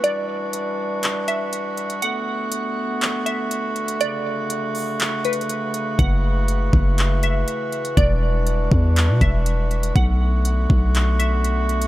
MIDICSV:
0, 0, Header, 1, 5, 480
1, 0, Start_track
1, 0, Key_signature, 2, "minor"
1, 0, Tempo, 495868
1, 38, Time_signature, 4, 2, 24, 8
1, 11496, End_track
2, 0, Start_track
2, 0, Title_t, "Synth pluck"
2, 0, Program_c, 0, 84
2, 36, Note_on_c, 0, 74, 97
2, 488, Note_off_c, 0, 74, 0
2, 1239, Note_on_c, 0, 76, 73
2, 1920, Note_off_c, 0, 76, 0
2, 1958, Note_on_c, 0, 78, 98
2, 2409, Note_off_c, 0, 78, 0
2, 3156, Note_on_c, 0, 76, 83
2, 3385, Note_off_c, 0, 76, 0
2, 3879, Note_on_c, 0, 74, 106
2, 4329, Note_off_c, 0, 74, 0
2, 5082, Note_on_c, 0, 71, 81
2, 5308, Note_off_c, 0, 71, 0
2, 5796, Note_on_c, 0, 78, 93
2, 6248, Note_off_c, 0, 78, 0
2, 7003, Note_on_c, 0, 76, 78
2, 7229, Note_off_c, 0, 76, 0
2, 7715, Note_on_c, 0, 74, 105
2, 8168, Note_off_c, 0, 74, 0
2, 8919, Note_on_c, 0, 76, 73
2, 9600, Note_off_c, 0, 76, 0
2, 9639, Note_on_c, 0, 78, 98
2, 10089, Note_off_c, 0, 78, 0
2, 10836, Note_on_c, 0, 76, 84
2, 11065, Note_off_c, 0, 76, 0
2, 11496, End_track
3, 0, Start_track
3, 0, Title_t, "Woodwind section"
3, 0, Program_c, 1, 71
3, 0, Note_on_c, 1, 52, 84
3, 0, Note_on_c, 1, 66, 91
3, 38, Note_on_c, 1, 55, 80
3, 38, Note_on_c, 1, 62, 79
3, 1920, Note_off_c, 1, 52, 0
3, 1938, Note_off_c, 1, 55, 0
3, 1938, Note_off_c, 1, 62, 0
3, 1957, Note_on_c, 1, 57, 75
3, 1958, Note_on_c, 1, 50, 82
3, 1958, Note_on_c, 1, 59, 80
3, 3713, Note_off_c, 1, 59, 0
3, 3878, Note_on_c, 1, 49, 75
3, 5759, Note_off_c, 1, 50, 0
3, 5798, Note_on_c, 1, 52, 87
3, 7679, Note_off_c, 1, 49, 0
3, 7679, Note_off_c, 1, 57, 0
3, 7717, Note_on_c, 1, 55, 78
3, 7718, Note_on_c, 1, 62, 79
3, 9599, Note_off_c, 1, 52, 0
3, 9599, Note_off_c, 1, 66, 0
3, 9618, Note_off_c, 1, 55, 0
3, 9618, Note_off_c, 1, 62, 0
3, 9636, Note_on_c, 1, 50, 86
3, 9636, Note_on_c, 1, 57, 81
3, 9636, Note_on_c, 1, 59, 73
3, 9636, Note_on_c, 1, 66, 91
3, 11496, Note_off_c, 1, 50, 0
3, 11496, Note_off_c, 1, 57, 0
3, 11496, Note_off_c, 1, 59, 0
3, 11496, Note_off_c, 1, 66, 0
3, 11496, End_track
4, 0, Start_track
4, 0, Title_t, "808-style bass"
4, 0, Program_c, 2, 38
4, 5798, Note_on_c, 2, 30, 108
4, 6489, Note_off_c, 2, 30, 0
4, 6516, Note_on_c, 2, 30, 106
4, 7208, Note_off_c, 2, 30, 0
4, 7717, Note_on_c, 2, 28, 112
4, 8409, Note_off_c, 2, 28, 0
4, 8436, Note_on_c, 2, 40, 103
4, 8797, Note_on_c, 2, 47, 94
4, 8812, Note_off_c, 2, 40, 0
4, 8912, Note_off_c, 2, 47, 0
4, 8917, Note_on_c, 2, 28, 97
4, 9609, Note_off_c, 2, 28, 0
4, 9638, Note_on_c, 2, 35, 110
4, 10329, Note_off_c, 2, 35, 0
4, 10357, Note_on_c, 2, 35, 102
4, 11496, Note_off_c, 2, 35, 0
4, 11496, End_track
5, 0, Start_track
5, 0, Title_t, "Drums"
5, 38, Note_on_c, 9, 42, 81
5, 134, Note_off_c, 9, 42, 0
5, 515, Note_on_c, 9, 42, 82
5, 612, Note_off_c, 9, 42, 0
5, 996, Note_on_c, 9, 42, 78
5, 1006, Note_on_c, 9, 39, 116
5, 1093, Note_off_c, 9, 42, 0
5, 1103, Note_off_c, 9, 39, 0
5, 1238, Note_on_c, 9, 42, 73
5, 1335, Note_off_c, 9, 42, 0
5, 1478, Note_on_c, 9, 42, 72
5, 1575, Note_off_c, 9, 42, 0
5, 1718, Note_on_c, 9, 42, 40
5, 1814, Note_off_c, 9, 42, 0
5, 1838, Note_on_c, 9, 42, 65
5, 1935, Note_off_c, 9, 42, 0
5, 1958, Note_on_c, 9, 42, 84
5, 2055, Note_off_c, 9, 42, 0
5, 2436, Note_on_c, 9, 42, 84
5, 2533, Note_off_c, 9, 42, 0
5, 2917, Note_on_c, 9, 42, 78
5, 2927, Note_on_c, 9, 39, 116
5, 3014, Note_off_c, 9, 42, 0
5, 3024, Note_off_c, 9, 39, 0
5, 3159, Note_on_c, 9, 42, 73
5, 3256, Note_off_c, 9, 42, 0
5, 3399, Note_on_c, 9, 42, 72
5, 3495, Note_off_c, 9, 42, 0
5, 3638, Note_on_c, 9, 42, 40
5, 3735, Note_off_c, 9, 42, 0
5, 3758, Note_on_c, 9, 42, 67
5, 3855, Note_off_c, 9, 42, 0
5, 3878, Note_on_c, 9, 42, 81
5, 3975, Note_off_c, 9, 42, 0
5, 4356, Note_on_c, 9, 42, 86
5, 4453, Note_off_c, 9, 42, 0
5, 4596, Note_on_c, 9, 46, 58
5, 4693, Note_off_c, 9, 46, 0
5, 4838, Note_on_c, 9, 42, 79
5, 4847, Note_on_c, 9, 39, 108
5, 4934, Note_off_c, 9, 42, 0
5, 4944, Note_off_c, 9, 39, 0
5, 5078, Note_on_c, 9, 42, 77
5, 5158, Note_off_c, 9, 42, 0
5, 5158, Note_on_c, 9, 42, 62
5, 5238, Note_off_c, 9, 42, 0
5, 5238, Note_on_c, 9, 42, 43
5, 5319, Note_off_c, 9, 42, 0
5, 5319, Note_on_c, 9, 42, 74
5, 5416, Note_off_c, 9, 42, 0
5, 5556, Note_on_c, 9, 42, 68
5, 5653, Note_off_c, 9, 42, 0
5, 5798, Note_on_c, 9, 36, 125
5, 5798, Note_on_c, 9, 42, 83
5, 5895, Note_off_c, 9, 36, 0
5, 5895, Note_off_c, 9, 42, 0
5, 6276, Note_on_c, 9, 42, 89
5, 6373, Note_off_c, 9, 42, 0
5, 6516, Note_on_c, 9, 36, 91
5, 6613, Note_off_c, 9, 36, 0
5, 6757, Note_on_c, 9, 42, 79
5, 6767, Note_on_c, 9, 39, 110
5, 6854, Note_off_c, 9, 42, 0
5, 6864, Note_off_c, 9, 39, 0
5, 6998, Note_on_c, 9, 42, 74
5, 7095, Note_off_c, 9, 42, 0
5, 7238, Note_on_c, 9, 42, 74
5, 7335, Note_off_c, 9, 42, 0
5, 7477, Note_on_c, 9, 42, 41
5, 7574, Note_off_c, 9, 42, 0
5, 7597, Note_on_c, 9, 42, 66
5, 7694, Note_off_c, 9, 42, 0
5, 7717, Note_on_c, 9, 36, 122
5, 7717, Note_on_c, 9, 42, 78
5, 7814, Note_off_c, 9, 36, 0
5, 7814, Note_off_c, 9, 42, 0
5, 8195, Note_on_c, 9, 42, 86
5, 8292, Note_off_c, 9, 42, 0
5, 8436, Note_on_c, 9, 36, 92
5, 8533, Note_off_c, 9, 36, 0
5, 8676, Note_on_c, 9, 42, 83
5, 8686, Note_on_c, 9, 39, 109
5, 8773, Note_off_c, 9, 42, 0
5, 8783, Note_off_c, 9, 39, 0
5, 8917, Note_on_c, 9, 36, 94
5, 8918, Note_on_c, 9, 42, 75
5, 9014, Note_off_c, 9, 36, 0
5, 9015, Note_off_c, 9, 42, 0
5, 9158, Note_on_c, 9, 42, 71
5, 9255, Note_off_c, 9, 42, 0
5, 9398, Note_on_c, 9, 42, 39
5, 9495, Note_off_c, 9, 42, 0
5, 9518, Note_on_c, 9, 42, 70
5, 9614, Note_off_c, 9, 42, 0
5, 9638, Note_on_c, 9, 36, 119
5, 9638, Note_on_c, 9, 42, 82
5, 9734, Note_off_c, 9, 36, 0
5, 9734, Note_off_c, 9, 42, 0
5, 10116, Note_on_c, 9, 42, 89
5, 10212, Note_off_c, 9, 42, 0
5, 10357, Note_on_c, 9, 36, 94
5, 10454, Note_off_c, 9, 36, 0
5, 10597, Note_on_c, 9, 42, 78
5, 10607, Note_on_c, 9, 39, 113
5, 10694, Note_off_c, 9, 42, 0
5, 10703, Note_off_c, 9, 39, 0
5, 10838, Note_on_c, 9, 42, 70
5, 10935, Note_off_c, 9, 42, 0
5, 11078, Note_on_c, 9, 42, 69
5, 11175, Note_off_c, 9, 42, 0
5, 11317, Note_on_c, 9, 42, 41
5, 11414, Note_off_c, 9, 42, 0
5, 11437, Note_on_c, 9, 42, 70
5, 11496, Note_off_c, 9, 42, 0
5, 11496, End_track
0, 0, End_of_file